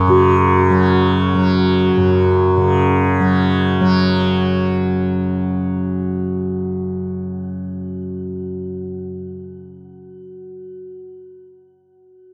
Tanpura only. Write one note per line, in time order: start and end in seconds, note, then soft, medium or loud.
0.00 1.96 F#2 soft
0.00 0.70 F#3 medium
0.08 2.56 C#3 medium
0.70 1.34 F#3 soft
1.34 3.20 F#3 medium
1.97 9.12 F#2 medium
2.57 9.72 C#3 medium
3.20 3.81 F#3 soft
3.81 10.58 F#3 medium